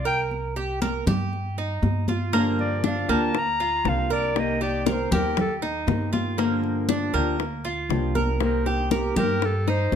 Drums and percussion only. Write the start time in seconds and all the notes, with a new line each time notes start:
0.31 high conga
0.57 high conga
0.82 high conga
1.07 high conga, low conga
1.33 high conga
1.58 high conga
1.83 high conga
2.08 high conga
2.33 high bongo, high conga
2.59 high conga
2.84 high bongo, high conga
3.09 high conga
3.35 high bongo, high conga
3.60 high conga
3.85 high bongo, low bongo, high conga
4.36 high bongo, high conga
4.61 high bongo, high conga
4.86 high bongo, high conga
5.12 high bongo, high conga, low conga
5.37 high bongo, high conga, low conga
5.63 high bongo, high conga
5.88 high bongo, low bongo, high conga
6.14 high conga
6.39 high bongo, high conga
6.64 high conga
6.89 high bongo, high conga
7.15 high conga
7.40 high bongo, high conga
7.66 high conga
7.90 high bongo, low bongo, high conga
8.15 high conga
8.40 high bongo, high conga
8.66 high bongo, high conga
8.91 high bongo, high conga
9.16 high bongo, high conga, low conga
9.42 high bongo, high conga
9.67 high bongo, high conga
9.92 high conga